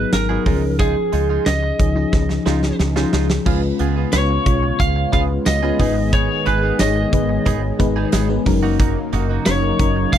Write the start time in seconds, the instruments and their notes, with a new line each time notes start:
Already playing: fm electric piano F#3 B3 D#4 G#4, lead electric guitar B4
0.13 fretless electric bass G#1, lead electric guitar A#4, muted clean electric guitar stroke, snare, closed hi-hat
0.29 fm electric piano F#3 B3 D#4 G#4, clean electric guitar B3 F#4 G#4
0.45 fretless electric bass C#2, fm electric piano F3 C#4 D#4 G#4, clean electric guitar G#3 D#4 F4, kick, open hi-hat
0.62 muted clean electric guitar stroke
0.79 clean electric guitar G#3 D#4 F4, lead electric guitar G#4, kick, closed hi-hat
0.96 muted clean electric guitar stroke
1.12 fretless electric bass C#2, clean electric guitar G#3 D#4 F4, closed hi-hat
1.29 clean electric guitar G#3 D#4 F4
1.46 fretless electric bass C#2, lead electric guitar D#5, muted clean electric guitar stroke, snare, closed hi-hat
1.63 muted clean electric guitar stroke
1.79 fretless electric bass C#2, fm electric piano F3 C#4 D#4 G#4, kick, closed hi-hat
1.95 fm electric piano F3 C#4 D#4 G#4, muted clean electric guitar stroke
2.13 fretless electric bass C#2, muted clean electric guitar stroke, kick, snare
2.29 muted clean electric guitar stroke, snare
2.45 fretless electric bass C#2, fm electric piano F3 C#4 D#4 G#4, clean electric guitar G#3 D#4 F4, snare
2.63 muted clean electric guitar stroke, snare
2.79 fretless electric bass C#2, muted clean electric guitar stroke, snare
2.95 fm electric piano F3 C#4 D#4 G#4, clean electric guitar G#3 D#4 F4, snare
3.13 fretless electric bass C#2, clean electric guitar G#3 D#4 F4, snare
3.29 muted clean electric guitar stroke, snare
3.45 fretless electric bass C#2, analog synth pad C#3 G#3 B3 F4, fm electric piano G#3 C#4 F4 B4, clean electric guitar B3 F4 G#4, kick, crash
3.79 fretless electric bass C#2, clean electric guitar B3 F4 G#4, closed hi-hat
3.96 clean electric guitar B3 F4 G#4
4.12 fretless electric bass C#2, fm electric piano G#3 C#4 F4 B4, lead electric guitar C#5, muted clean electric guitar stroke, snare, closed hi-hat, tambourine
4.29 muted clean electric guitar stroke
4.46 fretless electric bass B1, fm electric piano G#3 C#4 F4 C#5, kick, closed hi-hat
4.63 muted clean electric guitar stroke
4.79 fretless electric bass C#2, lead electric guitar F5, muted clean electric guitar stroke, kick, closed hi-hat
4.96 muted clean electric guitar stroke
5.12 fretless electric bass C#2, fm electric piano G#3 C#4 F4 B4, clean electric guitar B3 F4 G#4, lead electric guitar F5, kick, closed hi-hat
5.29 muted clean electric guitar stroke
5.46 fretless electric bass C#2, lead electric guitar D#5, muted clean electric guitar stroke, snare, closed hi-hat, tambourine
5.62 fm electric piano G#3 C#4 F4 B4, clean electric guitar B3 F4 G#4
5.79 fretless electric bass G#1, analog synth pad D#3 G#4, fm electric piano G#3 B3 D#4 B4, clean electric guitar B3 D#4 G#4, kick, open hi-hat
5.96 muted clean electric guitar stroke
6.13 clean electric guitar B3 D#4 G#4, lead electric guitar C#5, kick, closed hi-hat
6.29 muted clean electric guitar stroke
6.46 fretless electric bass G#1, clean electric guitar B3 D#4 G#4, lead electric guitar B4, closed hi-hat
6.63 clean electric guitar B3 D#4 G#4
6.79 fretless electric bass G#1, fm electric piano G#3 B3 D#4 C#5, lead electric guitar D#5, muted clean electric guitar stroke, snare, closed hi-hat, tambourine
6.96 muted clean electric guitar stroke
7.12 fretless electric bass G#1, fm electric piano G#3 B3 D#4 B4, kick, closed hi-hat
7.29 muted clean electric guitar stroke
7.46 fretless electric bass G#1, clean electric guitar B3 D#4 G#4, kick, closed hi-hat
7.63 muted clean electric guitar stroke
7.79 fretless electric bass G#1, fm electric piano G#3 B3 D#4 B4, muted clean electric guitar stroke, kick, closed hi-hat
7.96 clean electric guitar B3 D#4 G#4
8.12 fretless electric bass G#1, clean electric guitar B3 D#4 G#4, snare, closed hi-hat, tambourine
8.29 fm electric piano G#3 B3 D#4 B4, muted clean electric guitar stroke
8.45 fretless electric bass F#1, analog synth pad C#3 F#3 A#3 D#4, fm electric piano F#3 C#4 D#4 A#4, muted clean electric guitar stroke, kick, open hi-hat
8.63 clean electric guitar A#3 D#4 F#4
8.79 clean electric guitar A#3 D#4 F#4, kick, closed hi-hat
8.96 muted clean electric guitar stroke
9.13 fretless electric bass F#1, clean electric guitar A#3 D#4 F#4, closed hi-hat
9.29 clean electric guitar A#3 D#4 F#4
9.45 fretless electric bass F#1, fm electric piano F#3 C#4 D#4 A#4, lead electric guitar C#5, snare, closed hi-hat, tambourine
9.63 muted clean electric guitar stroke
9.79 fretless electric bass F#1, fm electric piano F#3 C#4 D#4 A#4, kick, closed hi-hat
9.96 muted clean electric guitar stroke
10.13 fretless electric bass F#1, lead electric guitar F5, muted clean electric guitar stroke, kick, closed hi-hat